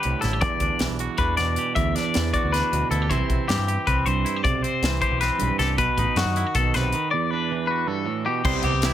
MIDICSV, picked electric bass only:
0, 0, Header, 1, 2, 480
1, 0, Start_track
1, 0, Key_signature, 1, "minor"
1, 0, Tempo, 381922
1, 533, Time_signature, 7, 3, 24, 8
1, 11228, End_track
2, 0, Start_track
2, 0, Title_t, "Picked electric bass"
2, 0, Program_c, 0, 34
2, 61, Note_on_c, 0, 36, 73
2, 165, Note_off_c, 0, 36, 0
2, 293, Note_on_c, 0, 33, 90
2, 527, Note_off_c, 0, 33, 0
2, 527, Note_on_c, 0, 40, 85
2, 639, Note_off_c, 0, 40, 0
2, 759, Note_on_c, 0, 38, 95
2, 875, Note_off_c, 0, 38, 0
2, 1011, Note_on_c, 0, 35, 88
2, 1115, Note_off_c, 0, 35, 0
2, 1122, Note_on_c, 0, 35, 76
2, 1347, Note_off_c, 0, 35, 0
2, 1489, Note_on_c, 0, 40, 80
2, 1711, Note_off_c, 0, 40, 0
2, 1734, Note_on_c, 0, 40, 80
2, 1955, Note_off_c, 0, 40, 0
2, 2215, Note_on_c, 0, 38, 86
2, 2436, Note_off_c, 0, 38, 0
2, 2712, Note_on_c, 0, 40, 86
2, 2927, Note_off_c, 0, 40, 0
2, 3065, Note_on_c, 0, 38, 73
2, 3284, Note_off_c, 0, 38, 0
2, 3425, Note_on_c, 0, 38, 72
2, 3536, Note_off_c, 0, 38, 0
2, 3655, Note_on_c, 0, 38, 82
2, 3909, Note_on_c, 0, 36, 86
2, 3928, Note_off_c, 0, 38, 0
2, 4019, Note_off_c, 0, 36, 0
2, 4142, Note_on_c, 0, 35, 89
2, 4255, Note_off_c, 0, 35, 0
2, 4389, Note_on_c, 0, 43, 85
2, 4494, Note_off_c, 0, 43, 0
2, 4502, Note_on_c, 0, 43, 75
2, 4724, Note_off_c, 0, 43, 0
2, 4870, Note_on_c, 0, 36, 79
2, 5089, Note_off_c, 0, 36, 0
2, 5099, Note_on_c, 0, 36, 68
2, 5323, Note_off_c, 0, 36, 0
2, 5582, Note_on_c, 0, 35, 98
2, 5805, Note_off_c, 0, 35, 0
2, 6060, Note_on_c, 0, 36, 89
2, 6284, Note_off_c, 0, 36, 0
2, 6423, Note_on_c, 0, 35, 79
2, 6646, Note_off_c, 0, 35, 0
2, 6802, Note_on_c, 0, 35, 74
2, 6908, Note_off_c, 0, 35, 0
2, 7026, Note_on_c, 0, 36, 98
2, 7275, Note_off_c, 0, 36, 0
2, 7275, Note_on_c, 0, 35, 91
2, 7383, Note_off_c, 0, 35, 0
2, 7512, Note_on_c, 0, 33, 96
2, 7622, Note_off_c, 0, 33, 0
2, 7740, Note_on_c, 0, 42, 85
2, 7847, Note_off_c, 0, 42, 0
2, 7855, Note_on_c, 0, 42, 83
2, 8080, Note_off_c, 0, 42, 0
2, 8231, Note_on_c, 0, 35, 76
2, 8448, Note_off_c, 0, 35, 0
2, 8479, Note_on_c, 0, 35, 80
2, 8692, Note_off_c, 0, 35, 0
2, 10611, Note_on_c, 0, 36, 99
2, 10721, Note_off_c, 0, 36, 0
2, 10850, Note_on_c, 0, 36, 100
2, 10959, Note_off_c, 0, 36, 0
2, 10964, Note_on_c, 0, 36, 88
2, 11228, Note_off_c, 0, 36, 0
2, 11228, End_track
0, 0, End_of_file